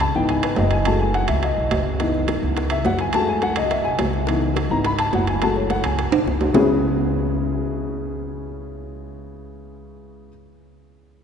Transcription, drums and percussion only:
0.00 high timbale medium
0.00 low timbale soft
0.29 high timbale medium
0.43 high timbale medium
0.56 low timbale medium
0.71 high timbale medium
0.85 high timbale medium
1.14 high timbale medium
1.14 low timbale soft
1.28 high timbale medium
1.43 high timbale medium
1.71 high timbale medium
1.71 low timbale medium
2.00 high bongo medium
2.00 high timbale medium
2.14 high bongo soft
2.28 high bongo medium
2.28 high timbale medium
2.28 low timbale soft
2.57 high bongo medium
2.57 high timbale medium
2.70 high bongo soft
2.70 high timbale medium
2.85 high bongo soft
2.85 low bongo medium
2.85 low timbale medium
2.99 high bongo soft
2.99 high timbale medium
3.13 high bongo medium
3.13 high timbale medium
3.28 high bongo soft
3.42 high bongo medium
3.42 high timbale medium
3.42 low timbale soft
3.56 high timbale medium
3.71 high bongo medium
3.71 high timbale medium
3.85 high bongo soft
3.99 high bongo soft
3.99 low bongo medium
3.99 high timbale medium
3.99 low timbale medium
4.13 high bongo soft
4.27 high bongo medium
4.27 high timbale medium
4.42 high bongo soft
4.56 high bongo medium
4.56 high timbale medium
4.56 low timbale soft
4.84 high bongo medium
4.84 high timbale medium
4.99 high bongo soft
4.99 high timbale medium
5.13 high bongo soft
5.13 low bongo medium
5.13 low timbale medium
5.27 high bongo soft
5.27 high timbale medium
5.42 high bongo medium
5.42 high timbale medium
5.56 high bongo soft
5.70 high bongo medium
5.70 high timbale medium
5.70 low timbale medium
5.84 high timbale medium
5.99 high bongo medium
5.99 high timbale medium
6.12 high bongo soft
6.12 high timbale medium
6.27 high bongo soft
6.27 low bongo medium
6.41 high bongo soft
6.41 low timbale medium
6.54 low bongo loud
6.54 low timbale medium

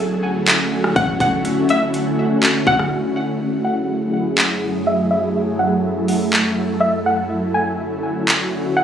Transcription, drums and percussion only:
0.47 clap loud
0.47 closed hi-hat medium
0.84 cross-stick medium
0.96 kick loud
0.96 closed hi-hat medium
1.20 kick loud
1.20 closed hi-hat medium
1.45 closed hi-hat medium
1.69 closed hi-hat medium
1.94 closed hi-hat medium
2.43 clap loud
2.43 closed hi-hat medium
2.67 kick loud
2.79 cross-stick loud
4.38 clap loud
6.08 open hi-hat medium
6.33 clap loud
8.29 clap loud

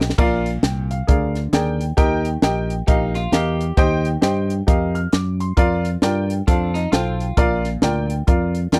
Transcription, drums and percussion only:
0.01 snare medium
0.10 snare medium
0.18 kick loud
0.18 crash medium
0.46 closed hi-hat medium
0.63 snare loud
0.63 closed hi-hat medium
0.91 closed hi-hat medium
1.08 kick loud
1.08 closed hi-hat medium
1.35 snare soft
1.35 closed hi-hat medium
1.53 snare loud
1.53 closed hi-hat medium
1.81 closed hi-hat medium
1.97 kick loud
1.97 closed hi-hat medium
2.25 closed hi-hat medium
2.42 snare loud
2.42 closed hi-hat medium
2.70 closed hi-hat medium
2.88 kick loud
2.88 closed hi-hat medium
3.15 snare soft
3.15 closed hi-hat medium
3.33 snare loud
3.33 closed hi-hat medium
3.61 closed hi-hat medium
3.77 kick loud
3.77 closed hi-hat medium
4.05 closed hi-hat medium
4.22 snare loud
4.22 closed hi-hat medium
4.50 closed hi-hat medium
4.68 kick loud
4.68 closed hi-hat medium
4.95 closed hi-hat medium
5.13 snare loud
5.13 closed hi-hat medium
5.40 closed hi-hat medium
5.57 kick loud
5.57 closed hi-hat medium
5.85 closed hi-hat medium
6.02 snare loud
6.02 closed hi-hat medium
6.30 closed hi-hat medium
6.48 kick loud
6.48 closed hi-hat medium
6.75 snare soft
6.75 closed hi-hat medium
6.93 snare loud
6.93 closed hi-hat medium
7.21 closed hi-hat medium
7.37 kick loud
7.37 closed hi-hat medium
7.64 snare soft
7.64 closed hi-hat medium
7.82 snare loud
7.82 closed hi-hat medium
8.10 closed hi-hat medium
8.27 kick loud
8.27 closed hi-hat medium
8.55 closed hi-hat medium
8.72 snare loud
8.72 closed hi-hat medium

